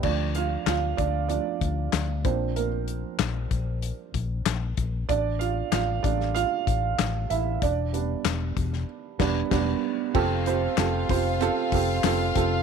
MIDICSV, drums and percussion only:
0, 0, Header, 1, 2, 480
1, 0, Start_track
1, 0, Tempo, 631645
1, 30, Time_signature, 4, 2, 24, 8
1, 9596, End_track
2, 0, Start_track
2, 0, Title_t, "Drums"
2, 23, Note_on_c, 9, 49, 79
2, 27, Note_on_c, 9, 36, 86
2, 99, Note_off_c, 9, 49, 0
2, 103, Note_off_c, 9, 36, 0
2, 263, Note_on_c, 9, 42, 64
2, 339, Note_off_c, 9, 42, 0
2, 508, Note_on_c, 9, 42, 73
2, 509, Note_on_c, 9, 38, 110
2, 509, Note_on_c, 9, 39, 81
2, 584, Note_off_c, 9, 42, 0
2, 585, Note_off_c, 9, 38, 0
2, 585, Note_off_c, 9, 39, 0
2, 748, Note_on_c, 9, 36, 91
2, 748, Note_on_c, 9, 42, 65
2, 824, Note_off_c, 9, 36, 0
2, 824, Note_off_c, 9, 42, 0
2, 984, Note_on_c, 9, 42, 67
2, 1060, Note_off_c, 9, 42, 0
2, 1226, Note_on_c, 9, 36, 87
2, 1228, Note_on_c, 9, 42, 74
2, 1302, Note_off_c, 9, 36, 0
2, 1304, Note_off_c, 9, 42, 0
2, 1467, Note_on_c, 9, 38, 100
2, 1467, Note_on_c, 9, 39, 81
2, 1469, Note_on_c, 9, 42, 88
2, 1543, Note_off_c, 9, 38, 0
2, 1543, Note_off_c, 9, 39, 0
2, 1545, Note_off_c, 9, 42, 0
2, 1707, Note_on_c, 9, 42, 75
2, 1708, Note_on_c, 9, 36, 100
2, 1783, Note_off_c, 9, 42, 0
2, 1784, Note_off_c, 9, 36, 0
2, 1947, Note_on_c, 9, 42, 70
2, 2023, Note_off_c, 9, 42, 0
2, 2186, Note_on_c, 9, 42, 62
2, 2262, Note_off_c, 9, 42, 0
2, 2425, Note_on_c, 9, 42, 81
2, 2427, Note_on_c, 9, 38, 113
2, 2427, Note_on_c, 9, 39, 79
2, 2501, Note_off_c, 9, 42, 0
2, 2503, Note_off_c, 9, 38, 0
2, 2503, Note_off_c, 9, 39, 0
2, 2667, Note_on_c, 9, 36, 88
2, 2667, Note_on_c, 9, 42, 62
2, 2743, Note_off_c, 9, 36, 0
2, 2743, Note_off_c, 9, 42, 0
2, 2906, Note_on_c, 9, 42, 80
2, 2982, Note_off_c, 9, 42, 0
2, 3148, Note_on_c, 9, 36, 85
2, 3151, Note_on_c, 9, 42, 78
2, 3224, Note_off_c, 9, 36, 0
2, 3227, Note_off_c, 9, 42, 0
2, 3390, Note_on_c, 9, 38, 91
2, 3390, Note_on_c, 9, 39, 84
2, 3392, Note_on_c, 9, 42, 94
2, 3466, Note_off_c, 9, 38, 0
2, 3466, Note_off_c, 9, 39, 0
2, 3468, Note_off_c, 9, 42, 0
2, 3627, Note_on_c, 9, 42, 77
2, 3629, Note_on_c, 9, 36, 85
2, 3703, Note_off_c, 9, 42, 0
2, 3705, Note_off_c, 9, 36, 0
2, 3870, Note_on_c, 9, 36, 100
2, 3870, Note_on_c, 9, 42, 76
2, 3946, Note_off_c, 9, 36, 0
2, 3946, Note_off_c, 9, 42, 0
2, 4109, Note_on_c, 9, 42, 62
2, 4185, Note_off_c, 9, 42, 0
2, 4349, Note_on_c, 9, 42, 80
2, 4351, Note_on_c, 9, 38, 107
2, 4351, Note_on_c, 9, 39, 85
2, 4425, Note_off_c, 9, 42, 0
2, 4427, Note_off_c, 9, 38, 0
2, 4427, Note_off_c, 9, 39, 0
2, 4591, Note_on_c, 9, 36, 91
2, 4592, Note_on_c, 9, 42, 72
2, 4667, Note_off_c, 9, 36, 0
2, 4668, Note_off_c, 9, 42, 0
2, 4715, Note_on_c, 9, 38, 32
2, 4791, Note_off_c, 9, 38, 0
2, 4830, Note_on_c, 9, 42, 79
2, 4906, Note_off_c, 9, 42, 0
2, 5070, Note_on_c, 9, 36, 88
2, 5075, Note_on_c, 9, 42, 85
2, 5146, Note_off_c, 9, 36, 0
2, 5151, Note_off_c, 9, 42, 0
2, 5313, Note_on_c, 9, 38, 106
2, 5313, Note_on_c, 9, 39, 78
2, 5315, Note_on_c, 9, 42, 89
2, 5389, Note_off_c, 9, 38, 0
2, 5389, Note_off_c, 9, 39, 0
2, 5391, Note_off_c, 9, 42, 0
2, 5551, Note_on_c, 9, 42, 81
2, 5627, Note_off_c, 9, 42, 0
2, 5790, Note_on_c, 9, 42, 75
2, 5791, Note_on_c, 9, 36, 101
2, 5866, Note_off_c, 9, 42, 0
2, 5867, Note_off_c, 9, 36, 0
2, 6033, Note_on_c, 9, 42, 66
2, 6109, Note_off_c, 9, 42, 0
2, 6270, Note_on_c, 9, 42, 82
2, 6271, Note_on_c, 9, 38, 113
2, 6271, Note_on_c, 9, 39, 84
2, 6346, Note_off_c, 9, 42, 0
2, 6347, Note_off_c, 9, 38, 0
2, 6347, Note_off_c, 9, 39, 0
2, 6510, Note_on_c, 9, 36, 89
2, 6513, Note_on_c, 9, 42, 69
2, 6586, Note_off_c, 9, 36, 0
2, 6589, Note_off_c, 9, 42, 0
2, 6635, Note_on_c, 9, 38, 35
2, 6711, Note_off_c, 9, 38, 0
2, 6989, Note_on_c, 9, 36, 108
2, 6989, Note_on_c, 9, 38, 107
2, 6989, Note_on_c, 9, 49, 85
2, 7065, Note_off_c, 9, 36, 0
2, 7065, Note_off_c, 9, 38, 0
2, 7065, Note_off_c, 9, 49, 0
2, 7230, Note_on_c, 9, 36, 100
2, 7230, Note_on_c, 9, 38, 96
2, 7230, Note_on_c, 9, 49, 71
2, 7306, Note_off_c, 9, 36, 0
2, 7306, Note_off_c, 9, 38, 0
2, 7306, Note_off_c, 9, 49, 0
2, 7712, Note_on_c, 9, 36, 103
2, 7713, Note_on_c, 9, 49, 80
2, 7788, Note_off_c, 9, 36, 0
2, 7789, Note_off_c, 9, 49, 0
2, 7950, Note_on_c, 9, 44, 65
2, 7950, Note_on_c, 9, 46, 70
2, 8026, Note_off_c, 9, 44, 0
2, 8026, Note_off_c, 9, 46, 0
2, 8188, Note_on_c, 9, 44, 56
2, 8188, Note_on_c, 9, 46, 80
2, 8189, Note_on_c, 9, 38, 110
2, 8189, Note_on_c, 9, 39, 89
2, 8264, Note_off_c, 9, 44, 0
2, 8264, Note_off_c, 9, 46, 0
2, 8265, Note_off_c, 9, 38, 0
2, 8265, Note_off_c, 9, 39, 0
2, 8430, Note_on_c, 9, 36, 99
2, 8431, Note_on_c, 9, 44, 66
2, 8432, Note_on_c, 9, 46, 72
2, 8506, Note_off_c, 9, 36, 0
2, 8507, Note_off_c, 9, 44, 0
2, 8508, Note_off_c, 9, 46, 0
2, 8668, Note_on_c, 9, 46, 78
2, 8670, Note_on_c, 9, 44, 63
2, 8744, Note_off_c, 9, 46, 0
2, 8746, Note_off_c, 9, 44, 0
2, 8907, Note_on_c, 9, 44, 61
2, 8908, Note_on_c, 9, 36, 98
2, 8909, Note_on_c, 9, 46, 82
2, 8983, Note_off_c, 9, 44, 0
2, 8984, Note_off_c, 9, 36, 0
2, 8985, Note_off_c, 9, 46, 0
2, 9147, Note_on_c, 9, 44, 66
2, 9149, Note_on_c, 9, 38, 110
2, 9149, Note_on_c, 9, 39, 91
2, 9151, Note_on_c, 9, 46, 99
2, 9223, Note_off_c, 9, 44, 0
2, 9225, Note_off_c, 9, 38, 0
2, 9225, Note_off_c, 9, 39, 0
2, 9227, Note_off_c, 9, 46, 0
2, 9388, Note_on_c, 9, 44, 70
2, 9388, Note_on_c, 9, 46, 82
2, 9390, Note_on_c, 9, 36, 86
2, 9464, Note_off_c, 9, 44, 0
2, 9464, Note_off_c, 9, 46, 0
2, 9466, Note_off_c, 9, 36, 0
2, 9596, End_track
0, 0, End_of_file